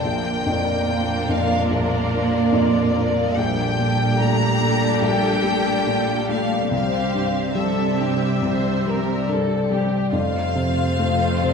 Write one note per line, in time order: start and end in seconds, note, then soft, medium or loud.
0.00 3.33 A#2 soft
0.00 1.69 A#2 soft
0.00 3.34 A#3 soft
0.00 3.33 D4 soft
0.00 0.84 F4 soft
0.00 3.34 F4 soft
0.00 3.34 A#4 soft
0.00 1.26 G5 soft
0.05 1.67 A#1 soft
0.23 0.64 F3 soft
0.44 1.12 F2 soft
0.44 2.10 D4 soft
0.65 1.06 F3 soft
0.86 1.54 A#3 soft
0.86 2.50 F4 soft
1.07 1.48 F3 soft
1.27 1.95 F2 soft
1.27 1.63 G3 soft
1.27 1.70 F5 medium
1.49 2.30 F3 soft
1.70 3.34 A#1 soft
1.70 3.35 A#2 soft
1.70 3.34 D5 medium
1.91 5.81 A#3 soft
2.11 2.77 A#3 soft
2.11 3.76 D4 soft
2.31 2.71 F3 soft
2.52 3.21 F2 soft
2.52 3.41 F4 soft
2.72 3.15 F3 soft
2.94 3.31 G3 soft
2.94 3.38 A#3 soft
3.16 3.41 F3 soft
3.36 4.98 A#1 soft
3.36 5.01 A#2 soft
3.36 6.68 A#2 soft
3.36 6.68 G3 soft
3.36 6.68 D4 soft
3.36 6.68 G4 soft
3.36 6.68 A4 soft
3.36 4.19 G5 medium
3.57 3.97 G3 soft
3.77 4.45 A#2 soft
3.77 5.43 D4 soft
3.99 4.38 G3 soft
4.18 4.87 A3 soft
4.18 5.85 G4 soft
4.18 5.02 A#5 medium
4.39 4.79 G3 soft
4.60 5.27 A#2 soft
4.60 4.96 A3 soft
4.80 5.65 G3 soft
5.01 6.67 A#1 soft
5.01 6.75 A#2 soft
5.01 6.29 G5 medium
5.23 6.28 A3 soft
5.43 6.12 A3 soft
5.43 6.75 D4 soft
5.66 6.07 G3 soft
5.86 6.55 A#2 soft
5.86 7.13 G4 soft
6.08 6.49 G3 soft
6.29 6.72 A3 soft
6.29 6.66 A3 soft
6.29 6.71 F5 soft
6.50 6.92 G3 soft
6.71 8.39 C2 soft
6.71 8.42 C3 soft
6.71 9.94 C3 soft
6.71 9.91 G3 soft
6.71 9.90 C4 soft
6.71 7.45 G4 soft
6.71 7.45 C5 soft
6.71 7.56 F5 soft
6.93 7.33 G3 soft
7.13 7.82 G2 soft
7.13 7.55 G4 soft
7.35 7.77 G3 soft
7.55 8.25 G3 soft
7.55 8.84 G4 soft
7.55 7.97 A4 soft
7.55 9.29 E5 soft
7.78 8.20 G3 soft
7.99 8.69 G2 soft
7.99 8.37 A3 soft
7.99 8.44 G4 soft
8.21 9.07 G3 soft
8.42 10.10 C2 soft
8.42 10.18 C3 soft
8.42 8.86 C5 soft
8.65 10.56 C4 soft
8.85 9.54 G3 soft
8.85 9.28 G4 soft
8.85 9.30 A#4 soft
9.08 9.48 G3 soft
9.28 9.96 G2 soft
9.28 10.18 G4 soft
9.28 9.72 A4 soft
9.50 9.91 G3 soft
9.70 10.13 G3 soft
9.70 10.07 A3 soft
9.70 10.15 G4 soft
9.92 10.17 G3 soft
10.13 11.53 F2 soft
10.13 11.53 A3 soft
10.13 11.53 C4 soft
10.13 11.53 F4 soft
10.13 11.53 C5 soft
10.13 11.53 F5 medium
10.36 10.78 C3 soft
10.55 11.25 C3 soft
10.55 11.53 C4 soft
10.79 11.19 C3 soft
10.99 11.53 A3 soft
10.99 11.53 F4 soft
11.20 11.53 C3 soft
11.42 11.53 C3 soft
11.42 11.53 D3 soft